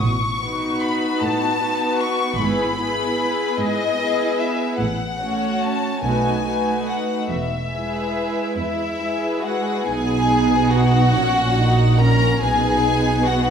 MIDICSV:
0, 0, Header, 1, 6, 480
1, 0, Start_track
1, 0, Key_signature, 4, "major"
1, 0, Tempo, 791557
1, 14, Time_signature, 6, 3, 24, 8
1, 1934, Tempo, 808625
1, 3374, Tempo, 853485
1, 5775, Key_signature, 5, "major"
1, 6734, Tempo, 836820
1, 7830, End_track
2, 0, Start_track
2, 0, Title_t, "Violin section"
2, 0, Program_c, 0, 48
2, 15, Note_on_c, 0, 85, 78
2, 489, Note_off_c, 0, 85, 0
2, 492, Note_on_c, 0, 83, 73
2, 734, Note_on_c, 0, 81, 86
2, 735, Note_off_c, 0, 83, 0
2, 1210, Note_on_c, 0, 85, 80
2, 1212, Note_off_c, 0, 81, 0
2, 1446, Note_on_c, 0, 83, 70
2, 1452, Note_off_c, 0, 85, 0
2, 2167, Note_off_c, 0, 83, 0
2, 2171, Note_on_c, 0, 75, 84
2, 2647, Note_off_c, 0, 75, 0
2, 2648, Note_on_c, 0, 76, 69
2, 2885, Note_on_c, 0, 78, 66
2, 2886, Note_off_c, 0, 76, 0
2, 3363, Note_off_c, 0, 78, 0
2, 3378, Note_on_c, 0, 81, 67
2, 3608, Note_on_c, 0, 80, 70
2, 3612, Note_off_c, 0, 81, 0
2, 4078, Note_off_c, 0, 80, 0
2, 4087, Note_on_c, 0, 78, 62
2, 4326, Note_on_c, 0, 76, 54
2, 4329, Note_off_c, 0, 78, 0
2, 5034, Note_off_c, 0, 76, 0
2, 5055, Note_on_c, 0, 76, 63
2, 5515, Note_off_c, 0, 76, 0
2, 5539, Note_on_c, 0, 78, 55
2, 5771, Note_on_c, 0, 80, 73
2, 5772, Note_off_c, 0, 78, 0
2, 6236, Note_on_c, 0, 78, 80
2, 6241, Note_off_c, 0, 80, 0
2, 6962, Note_off_c, 0, 78, 0
2, 6965, Note_on_c, 0, 82, 91
2, 7208, Note_off_c, 0, 82, 0
2, 7209, Note_on_c, 0, 80, 86
2, 7682, Note_off_c, 0, 80, 0
2, 7693, Note_on_c, 0, 78, 72
2, 7830, Note_off_c, 0, 78, 0
2, 7830, End_track
3, 0, Start_track
3, 0, Title_t, "Violin section"
3, 0, Program_c, 1, 48
3, 258, Note_on_c, 1, 71, 53
3, 259, Note_on_c, 1, 66, 51
3, 963, Note_off_c, 1, 66, 0
3, 963, Note_off_c, 1, 71, 0
3, 982, Note_on_c, 1, 66, 53
3, 984, Note_on_c, 1, 71, 51
3, 1448, Note_off_c, 1, 66, 0
3, 1449, Note_off_c, 1, 71, 0
3, 1458, Note_on_c, 1, 68, 51
3, 1460, Note_on_c, 1, 71, 46
3, 1690, Note_off_c, 1, 68, 0
3, 1691, Note_off_c, 1, 71, 0
3, 1700, Note_on_c, 1, 71, 58
3, 1701, Note_on_c, 1, 68, 55
3, 2399, Note_off_c, 1, 68, 0
3, 2399, Note_off_c, 1, 71, 0
3, 2418, Note_on_c, 1, 71, 54
3, 2419, Note_on_c, 1, 68, 49
3, 2880, Note_off_c, 1, 68, 0
3, 2880, Note_off_c, 1, 71, 0
3, 3133, Note_on_c, 1, 73, 49
3, 3135, Note_on_c, 1, 66, 51
3, 3603, Note_off_c, 1, 73, 0
3, 3604, Note_off_c, 1, 66, 0
3, 3610, Note_on_c, 1, 71, 41
3, 3613, Note_on_c, 1, 66, 45
3, 3843, Note_off_c, 1, 71, 0
3, 3845, Note_off_c, 1, 66, 0
3, 3854, Note_on_c, 1, 71, 43
3, 3855, Note_on_c, 1, 66, 38
3, 4323, Note_off_c, 1, 71, 0
3, 4324, Note_off_c, 1, 66, 0
3, 4567, Note_on_c, 1, 68, 40
3, 4568, Note_on_c, 1, 71, 45
3, 5039, Note_off_c, 1, 68, 0
3, 5039, Note_off_c, 1, 71, 0
3, 5048, Note_on_c, 1, 64, 53
3, 5293, Note_on_c, 1, 68, 42
3, 5294, Note_on_c, 1, 71, 42
3, 5512, Note_off_c, 1, 64, 0
3, 5527, Note_on_c, 1, 66, 47
3, 5765, Note_off_c, 1, 68, 0
3, 5766, Note_off_c, 1, 71, 0
3, 5771, Note_off_c, 1, 66, 0
3, 5774, Note_on_c, 1, 68, 72
3, 6242, Note_off_c, 1, 68, 0
3, 6249, Note_on_c, 1, 66, 76
3, 6968, Note_on_c, 1, 70, 70
3, 6969, Note_off_c, 1, 66, 0
3, 7209, Note_off_c, 1, 70, 0
3, 7216, Note_on_c, 1, 68, 74
3, 7686, Note_off_c, 1, 68, 0
3, 7690, Note_on_c, 1, 66, 66
3, 7830, Note_off_c, 1, 66, 0
3, 7830, End_track
4, 0, Start_track
4, 0, Title_t, "Viola section"
4, 0, Program_c, 2, 48
4, 259, Note_on_c, 2, 59, 45
4, 261, Note_on_c, 2, 63, 52
4, 963, Note_off_c, 2, 59, 0
4, 964, Note_off_c, 2, 63, 0
4, 987, Note_on_c, 2, 59, 46
4, 987, Note_on_c, 2, 63, 44
4, 1450, Note_off_c, 2, 59, 0
4, 1451, Note_off_c, 2, 63, 0
4, 1461, Note_on_c, 2, 59, 52
4, 1461, Note_on_c, 2, 64, 46
4, 1689, Note_off_c, 2, 59, 0
4, 1692, Note_off_c, 2, 64, 0
4, 1697, Note_on_c, 2, 59, 49
4, 1700, Note_on_c, 2, 64, 48
4, 2397, Note_off_c, 2, 59, 0
4, 2398, Note_off_c, 2, 64, 0
4, 2411, Note_on_c, 2, 64, 47
4, 2412, Note_on_c, 2, 59, 48
4, 2876, Note_off_c, 2, 64, 0
4, 2877, Note_off_c, 2, 59, 0
4, 3129, Note_on_c, 2, 57, 45
4, 3130, Note_on_c, 2, 61, 42
4, 3601, Note_off_c, 2, 57, 0
4, 3602, Note_off_c, 2, 61, 0
4, 3612, Note_on_c, 2, 63, 42
4, 3613, Note_on_c, 2, 57, 45
4, 3843, Note_off_c, 2, 63, 0
4, 3845, Note_off_c, 2, 57, 0
4, 3849, Note_on_c, 2, 63, 35
4, 3853, Note_on_c, 2, 57, 37
4, 4321, Note_off_c, 2, 63, 0
4, 4322, Note_off_c, 2, 57, 0
4, 4573, Note_on_c, 2, 64, 40
4, 4575, Note_on_c, 2, 56, 36
4, 5279, Note_off_c, 2, 64, 0
4, 5280, Note_off_c, 2, 56, 0
4, 5296, Note_on_c, 2, 56, 36
4, 5297, Note_on_c, 2, 64, 35
4, 5767, Note_off_c, 2, 56, 0
4, 5768, Note_off_c, 2, 64, 0
4, 5777, Note_on_c, 2, 63, 54
4, 5779, Note_on_c, 2, 59, 57
4, 6472, Note_off_c, 2, 63, 0
4, 6474, Note_off_c, 2, 59, 0
4, 6495, Note_on_c, 2, 61, 51
4, 6496, Note_off_c, 2, 61, 0
4, 6496, Note_on_c, 2, 61, 57
4, 6733, Note_off_c, 2, 61, 0
4, 6735, Note_on_c, 2, 63, 51
4, 6972, Note_off_c, 2, 63, 0
4, 6976, Note_on_c, 2, 61, 55
4, 7210, Note_on_c, 2, 59, 58
4, 7213, Note_off_c, 2, 61, 0
4, 7213, Note_on_c, 2, 63, 54
4, 7830, Note_off_c, 2, 59, 0
4, 7830, Note_off_c, 2, 63, 0
4, 7830, End_track
5, 0, Start_track
5, 0, Title_t, "Cello section"
5, 0, Program_c, 3, 48
5, 14, Note_on_c, 3, 45, 62
5, 643, Note_off_c, 3, 45, 0
5, 742, Note_on_c, 3, 45, 59
5, 1360, Note_off_c, 3, 45, 0
5, 1458, Note_on_c, 3, 44, 67
5, 2077, Note_off_c, 3, 44, 0
5, 2176, Note_on_c, 3, 44, 62
5, 2793, Note_off_c, 3, 44, 0
5, 2889, Note_on_c, 3, 45, 61
5, 3517, Note_off_c, 3, 45, 0
5, 3609, Note_on_c, 3, 47, 55
5, 4235, Note_off_c, 3, 47, 0
5, 4325, Note_on_c, 3, 40, 49
5, 4953, Note_off_c, 3, 40, 0
5, 5051, Note_on_c, 3, 40, 50
5, 5682, Note_off_c, 3, 40, 0
5, 5779, Note_on_c, 3, 47, 58
5, 6474, Note_off_c, 3, 47, 0
5, 6492, Note_on_c, 3, 46, 60
5, 7204, Note_on_c, 3, 47, 62
5, 7209, Note_off_c, 3, 46, 0
5, 7830, Note_off_c, 3, 47, 0
5, 7830, End_track
6, 0, Start_track
6, 0, Title_t, "Double bass section"
6, 0, Program_c, 4, 48
6, 18, Note_on_c, 4, 33, 57
6, 476, Note_off_c, 4, 33, 0
6, 1456, Note_on_c, 4, 32, 63
6, 1910, Note_off_c, 4, 32, 0
6, 2886, Note_on_c, 4, 33, 63
6, 3350, Note_off_c, 4, 33, 0
6, 3607, Note_on_c, 4, 35, 56
6, 4065, Note_off_c, 4, 35, 0
6, 4329, Note_on_c, 4, 28, 43
6, 4787, Note_off_c, 4, 28, 0
6, 5771, Note_on_c, 4, 35, 55
6, 6469, Note_off_c, 4, 35, 0
6, 6488, Note_on_c, 4, 34, 63
6, 7208, Note_off_c, 4, 34, 0
6, 7208, Note_on_c, 4, 35, 56
6, 7830, Note_off_c, 4, 35, 0
6, 7830, End_track
0, 0, End_of_file